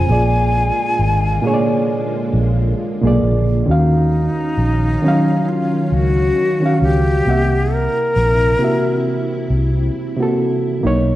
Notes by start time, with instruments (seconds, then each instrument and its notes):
Already playing: reed electric piano C#3 C#4 F4 C5, string machine F4, flute G#5
0.07 fingered electric bass A#1, reed electric piano A#2 A#3 G#4, string machine D3 G#3 A#3
0.12 reed electric piano D5
0.99 fingered electric bass G#1
1.42 reed electric piano A#2 A#3 G#4
1.47 reed electric piano C#5
1.54 reed electric piano D5
2.34 fingered electric bass A#1
3.02 fingered electric bass B1, reed electric piano A#2 A#3 G#4
3.07 reed electric piano D5
3.23 fingered electric bass A#1
3.66 fingered electric bass D#2, reed electric piano D#3 C#4 F#4, string machine D#3 C#4 F5, flute D#4
3.71 reed electric piano F5
4.57 fingered electric bass A#1
5.03 reed electric piano D#3 F#3 C#4
5.08 reed electric piano F5
5.49 flute F4
5.86 flute F4
5.92 fingered electric bass C#2, flute F#4
6.60 reed electric piano D#3 C#4 F#4
6.66 reed electric piano F5
6.82 fingered electric bass C#2, flute G4
7.25 fingered electric bass C2, reed electric piano C3 A#3 F#5, string machine C3 E4
7.31 reed electric piano E5
7.73 flute A#4
8.16 fingered electric bass A#1
8.59 reed electric piano C3 A#3 F#4
8.64 reed electric piano E5
9.50 fingered electric bass C2
10.17 reed electric piano C3 A#3 F#4
10.22 reed electric piano A4
10.81 fingered electric bass B1, reed electric piano B2 A#3 D#4, string machine C#3 C#4 D#4
10.87 reed electric piano C#5